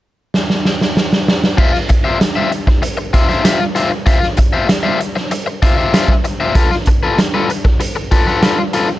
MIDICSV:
0, 0, Header, 1, 4, 480
1, 0, Start_track
1, 0, Tempo, 622407
1, 1217, Time_signature, 4, 2, 24, 8
1, 6936, End_track
2, 0, Start_track
2, 0, Title_t, "Overdriven electric guitar"
2, 0, Program_c, 0, 29
2, 1215, Note_on_c, 0, 65, 82
2, 1217, Note_on_c, 0, 72, 93
2, 1224, Note_on_c, 0, 76, 100
2, 1326, Note_off_c, 0, 76, 0
2, 1332, Note_off_c, 0, 72, 0
2, 1355, Note_off_c, 0, 65, 0
2, 1576, Note_on_c, 0, 76, 65
2, 1581, Note_on_c, 0, 72, 63
2, 1586, Note_on_c, 0, 65, 54
2, 1682, Note_off_c, 0, 65, 0
2, 1685, Note_off_c, 0, 76, 0
2, 1686, Note_off_c, 0, 72, 0
2, 1819, Note_on_c, 0, 76, 76
2, 1825, Note_on_c, 0, 65, 53
2, 1826, Note_on_c, 0, 72, 63
2, 1929, Note_off_c, 0, 65, 0
2, 1931, Note_off_c, 0, 72, 0
2, 1933, Note_off_c, 0, 76, 0
2, 2417, Note_on_c, 0, 65, 59
2, 2420, Note_on_c, 0, 72, 56
2, 2425, Note_on_c, 0, 76, 71
2, 2525, Note_off_c, 0, 76, 0
2, 2526, Note_off_c, 0, 65, 0
2, 2528, Note_off_c, 0, 72, 0
2, 2535, Note_on_c, 0, 76, 61
2, 2538, Note_on_c, 0, 72, 53
2, 2545, Note_on_c, 0, 65, 42
2, 2645, Note_off_c, 0, 76, 0
2, 2646, Note_off_c, 0, 65, 0
2, 2647, Note_off_c, 0, 72, 0
2, 2655, Note_on_c, 0, 65, 75
2, 2656, Note_on_c, 0, 72, 85
2, 2662, Note_on_c, 0, 76, 88
2, 2770, Note_off_c, 0, 76, 0
2, 2772, Note_off_c, 0, 72, 0
2, 2796, Note_off_c, 0, 65, 0
2, 2894, Note_on_c, 0, 65, 67
2, 2901, Note_on_c, 0, 72, 57
2, 2903, Note_on_c, 0, 76, 69
2, 3003, Note_off_c, 0, 76, 0
2, 3005, Note_off_c, 0, 65, 0
2, 3008, Note_off_c, 0, 72, 0
2, 3131, Note_on_c, 0, 65, 76
2, 3137, Note_on_c, 0, 72, 74
2, 3138, Note_on_c, 0, 76, 87
2, 3235, Note_off_c, 0, 76, 0
2, 3239, Note_off_c, 0, 72, 0
2, 3274, Note_off_c, 0, 65, 0
2, 3493, Note_on_c, 0, 76, 65
2, 3498, Note_on_c, 0, 72, 64
2, 3500, Note_on_c, 0, 65, 55
2, 3604, Note_off_c, 0, 65, 0
2, 3604, Note_off_c, 0, 76, 0
2, 3605, Note_off_c, 0, 72, 0
2, 3726, Note_on_c, 0, 76, 66
2, 3732, Note_on_c, 0, 72, 66
2, 3735, Note_on_c, 0, 65, 58
2, 3846, Note_off_c, 0, 65, 0
2, 3849, Note_off_c, 0, 72, 0
2, 3851, Note_off_c, 0, 76, 0
2, 4337, Note_on_c, 0, 65, 65
2, 4342, Note_on_c, 0, 72, 61
2, 4346, Note_on_c, 0, 76, 67
2, 4444, Note_off_c, 0, 76, 0
2, 4446, Note_off_c, 0, 65, 0
2, 4449, Note_off_c, 0, 72, 0
2, 4454, Note_on_c, 0, 76, 62
2, 4458, Note_on_c, 0, 72, 57
2, 4463, Note_on_c, 0, 65, 45
2, 4564, Note_off_c, 0, 76, 0
2, 4567, Note_off_c, 0, 65, 0
2, 4567, Note_off_c, 0, 72, 0
2, 4577, Note_on_c, 0, 65, 77
2, 4579, Note_on_c, 0, 72, 83
2, 4587, Note_on_c, 0, 76, 80
2, 4716, Note_off_c, 0, 65, 0
2, 4717, Note_off_c, 0, 72, 0
2, 4721, Note_off_c, 0, 76, 0
2, 4938, Note_on_c, 0, 76, 63
2, 4941, Note_on_c, 0, 72, 57
2, 4945, Note_on_c, 0, 65, 42
2, 5045, Note_off_c, 0, 65, 0
2, 5046, Note_off_c, 0, 76, 0
2, 5048, Note_off_c, 0, 72, 0
2, 5055, Note_on_c, 0, 65, 82
2, 5057, Note_on_c, 0, 69, 85
2, 5061, Note_on_c, 0, 71, 94
2, 5166, Note_off_c, 0, 71, 0
2, 5175, Note_off_c, 0, 69, 0
2, 5195, Note_off_c, 0, 65, 0
2, 5422, Note_on_c, 0, 71, 64
2, 5425, Note_on_c, 0, 69, 57
2, 5432, Note_on_c, 0, 65, 48
2, 5528, Note_off_c, 0, 71, 0
2, 5530, Note_off_c, 0, 69, 0
2, 5533, Note_off_c, 0, 65, 0
2, 5662, Note_on_c, 0, 71, 75
2, 5667, Note_on_c, 0, 69, 71
2, 5669, Note_on_c, 0, 65, 65
2, 5776, Note_off_c, 0, 65, 0
2, 5778, Note_off_c, 0, 69, 0
2, 5783, Note_off_c, 0, 71, 0
2, 6259, Note_on_c, 0, 65, 72
2, 6265, Note_on_c, 0, 69, 74
2, 6267, Note_on_c, 0, 71, 67
2, 6366, Note_off_c, 0, 65, 0
2, 6367, Note_off_c, 0, 71, 0
2, 6369, Note_off_c, 0, 69, 0
2, 6376, Note_on_c, 0, 71, 65
2, 6380, Note_on_c, 0, 69, 56
2, 6384, Note_on_c, 0, 65, 57
2, 6485, Note_off_c, 0, 71, 0
2, 6486, Note_off_c, 0, 69, 0
2, 6488, Note_off_c, 0, 65, 0
2, 6498, Note_on_c, 0, 65, 68
2, 6504, Note_on_c, 0, 69, 71
2, 6507, Note_on_c, 0, 71, 79
2, 6610, Note_off_c, 0, 71, 0
2, 6618, Note_off_c, 0, 69, 0
2, 6636, Note_off_c, 0, 65, 0
2, 6738, Note_on_c, 0, 65, 52
2, 6745, Note_on_c, 0, 69, 61
2, 6751, Note_on_c, 0, 71, 61
2, 6845, Note_off_c, 0, 65, 0
2, 6848, Note_off_c, 0, 69, 0
2, 6848, Note_off_c, 0, 71, 0
2, 6936, End_track
3, 0, Start_track
3, 0, Title_t, "Muted overdriven electric guitar strokes"
3, 1336, Note_on_c, 9, 29, 41
3, 1413, Note_off_c, 9, 29, 0
3, 1460, Note_on_c, 9, 29, 39
3, 1537, Note_off_c, 9, 29, 0
3, 1691, Note_on_c, 9, 29, 33
3, 1769, Note_off_c, 9, 29, 0
3, 1938, Note_on_c, 9, 29, 36
3, 2015, Note_off_c, 9, 29, 0
3, 2063, Note_on_c, 9, 29, 49
3, 2140, Note_off_c, 9, 29, 0
3, 2178, Note_on_c, 9, 29, 41
3, 2255, Note_off_c, 9, 29, 0
3, 2293, Note_on_c, 9, 29, 36
3, 2370, Note_off_c, 9, 29, 0
3, 2779, Note_on_c, 9, 29, 47
3, 2857, Note_off_c, 9, 29, 0
3, 3013, Note_on_c, 9, 29, 47
3, 3090, Note_off_c, 9, 29, 0
3, 3244, Note_on_c, 9, 29, 39
3, 3322, Note_off_c, 9, 29, 0
3, 3374, Note_on_c, 9, 29, 42
3, 3452, Note_off_c, 9, 29, 0
3, 3613, Note_on_c, 9, 29, 36
3, 3690, Note_off_c, 9, 29, 0
3, 3855, Note_on_c, 9, 29, 35
3, 3932, Note_off_c, 9, 29, 0
3, 3978, Note_on_c, 9, 29, 54
3, 4056, Note_off_c, 9, 29, 0
3, 4099, Note_on_c, 9, 29, 36
3, 4176, Note_off_c, 9, 29, 0
3, 4214, Note_on_c, 9, 29, 42
3, 4292, Note_off_c, 9, 29, 0
3, 4816, Note_on_c, 9, 29, 33
3, 4893, Note_off_c, 9, 29, 0
3, 5176, Note_on_c, 9, 29, 44
3, 5253, Note_off_c, 9, 29, 0
3, 5304, Note_on_c, 9, 29, 35
3, 5381, Note_off_c, 9, 29, 0
3, 5544, Note_on_c, 9, 29, 37
3, 5621, Note_off_c, 9, 29, 0
3, 5786, Note_on_c, 9, 29, 41
3, 5863, Note_off_c, 9, 29, 0
3, 5898, Note_on_c, 9, 29, 43
3, 5975, Note_off_c, 9, 29, 0
3, 6014, Note_on_c, 9, 29, 30
3, 6091, Note_off_c, 9, 29, 0
3, 6137, Note_on_c, 9, 29, 36
3, 6214, Note_off_c, 9, 29, 0
3, 6620, Note_on_c, 9, 29, 52
3, 6697, Note_off_c, 9, 29, 0
3, 6857, Note_on_c, 9, 29, 38
3, 6934, Note_off_c, 9, 29, 0
3, 6936, End_track
4, 0, Start_track
4, 0, Title_t, "Drums"
4, 263, Note_on_c, 9, 38, 56
4, 340, Note_off_c, 9, 38, 0
4, 385, Note_on_c, 9, 38, 49
4, 462, Note_off_c, 9, 38, 0
4, 504, Note_on_c, 9, 38, 62
4, 581, Note_off_c, 9, 38, 0
4, 627, Note_on_c, 9, 38, 61
4, 704, Note_off_c, 9, 38, 0
4, 746, Note_on_c, 9, 38, 82
4, 824, Note_off_c, 9, 38, 0
4, 868, Note_on_c, 9, 38, 69
4, 945, Note_off_c, 9, 38, 0
4, 990, Note_on_c, 9, 38, 84
4, 1067, Note_off_c, 9, 38, 0
4, 1107, Note_on_c, 9, 38, 76
4, 1184, Note_off_c, 9, 38, 0
4, 1221, Note_on_c, 9, 36, 98
4, 1224, Note_on_c, 9, 49, 76
4, 1298, Note_off_c, 9, 36, 0
4, 1302, Note_off_c, 9, 49, 0
4, 1347, Note_on_c, 9, 38, 34
4, 1424, Note_off_c, 9, 38, 0
4, 1456, Note_on_c, 9, 42, 64
4, 1466, Note_on_c, 9, 36, 78
4, 1533, Note_off_c, 9, 42, 0
4, 1543, Note_off_c, 9, 36, 0
4, 1704, Note_on_c, 9, 38, 93
4, 1707, Note_on_c, 9, 42, 81
4, 1781, Note_off_c, 9, 38, 0
4, 1784, Note_off_c, 9, 42, 0
4, 1944, Note_on_c, 9, 42, 60
4, 2021, Note_off_c, 9, 42, 0
4, 2061, Note_on_c, 9, 36, 72
4, 2062, Note_on_c, 9, 38, 29
4, 2138, Note_off_c, 9, 36, 0
4, 2139, Note_off_c, 9, 38, 0
4, 2180, Note_on_c, 9, 42, 79
4, 2257, Note_off_c, 9, 42, 0
4, 2420, Note_on_c, 9, 42, 61
4, 2422, Note_on_c, 9, 36, 82
4, 2497, Note_off_c, 9, 42, 0
4, 2499, Note_off_c, 9, 36, 0
4, 2539, Note_on_c, 9, 38, 31
4, 2616, Note_off_c, 9, 38, 0
4, 2660, Note_on_c, 9, 38, 105
4, 2660, Note_on_c, 9, 42, 117
4, 2737, Note_off_c, 9, 38, 0
4, 2737, Note_off_c, 9, 42, 0
4, 2897, Note_on_c, 9, 42, 68
4, 2901, Note_on_c, 9, 38, 27
4, 2974, Note_off_c, 9, 42, 0
4, 2978, Note_off_c, 9, 38, 0
4, 3134, Note_on_c, 9, 42, 69
4, 3136, Note_on_c, 9, 36, 99
4, 3211, Note_off_c, 9, 42, 0
4, 3213, Note_off_c, 9, 36, 0
4, 3260, Note_on_c, 9, 38, 33
4, 3338, Note_off_c, 9, 38, 0
4, 3370, Note_on_c, 9, 42, 65
4, 3382, Note_on_c, 9, 36, 73
4, 3447, Note_off_c, 9, 42, 0
4, 3459, Note_off_c, 9, 36, 0
4, 3618, Note_on_c, 9, 38, 97
4, 3620, Note_on_c, 9, 42, 91
4, 3695, Note_off_c, 9, 38, 0
4, 3698, Note_off_c, 9, 42, 0
4, 3860, Note_on_c, 9, 42, 53
4, 3937, Note_off_c, 9, 42, 0
4, 3982, Note_on_c, 9, 38, 32
4, 4060, Note_off_c, 9, 38, 0
4, 4096, Note_on_c, 9, 42, 77
4, 4173, Note_off_c, 9, 42, 0
4, 4339, Note_on_c, 9, 36, 90
4, 4339, Note_on_c, 9, 42, 71
4, 4416, Note_off_c, 9, 36, 0
4, 4416, Note_off_c, 9, 42, 0
4, 4580, Note_on_c, 9, 38, 112
4, 4580, Note_on_c, 9, 42, 110
4, 4658, Note_off_c, 9, 38, 0
4, 4658, Note_off_c, 9, 42, 0
4, 4692, Note_on_c, 9, 36, 78
4, 4698, Note_on_c, 9, 38, 33
4, 4769, Note_off_c, 9, 36, 0
4, 4775, Note_off_c, 9, 38, 0
4, 4816, Note_on_c, 9, 42, 63
4, 4893, Note_off_c, 9, 42, 0
4, 5053, Note_on_c, 9, 42, 85
4, 5054, Note_on_c, 9, 36, 105
4, 5130, Note_off_c, 9, 42, 0
4, 5131, Note_off_c, 9, 36, 0
4, 5179, Note_on_c, 9, 38, 37
4, 5256, Note_off_c, 9, 38, 0
4, 5288, Note_on_c, 9, 42, 62
4, 5301, Note_on_c, 9, 36, 70
4, 5365, Note_off_c, 9, 42, 0
4, 5378, Note_off_c, 9, 36, 0
4, 5541, Note_on_c, 9, 38, 94
4, 5543, Note_on_c, 9, 42, 82
4, 5618, Note_off_c, 9, 38, 0
4, 5620, Note_off_c, 9, 42, 0
4, 5783, Note_on_c, 9, 42, 64
4, 5860, Note_off_c, 9, 42, 0
4, 5898, Note_on_c, 9, 36, 80
4, 5901, Note_on_c, 9, 38, 29
4, 5976, Note_off_c, 9, 36, 0
4, 5978, Note_off_c, 9, 38, 0
4, 6018, Note_on_c, 9, 42, 82
4, 6095, Note_off_c, 9, 42, 0
4, 6260, Note_on_c, 9, 36, 76
4, 6260, Note_on_c, 9, 42, 71
4, 6337, Note_off_c, 9, 36, 0
4, 6337, Note_off_c, 9, 42, 0
4, 6380, Note_on_c, 9, 38, 33
4, 6457, Note_off_c, 9, 38, 0
4, 6498, Note_on_c, 9, 38, 113
4, 6498, Note_on_c, 9, 42, 97
4, 6575, Note_off_c, 9, 38, 0
4, 6575, Note_off_c, 9, 42, 0
4, 6735, Note_on_c, 9, 42, 67
4, 6739, Note_on_c, 9, 38, 30
4, 6812, Note_off_c, 9, 42, 0
4, 6816, Note_off_c, 9, 38, 0
4, 6936, End_track
0, 0, End_of_file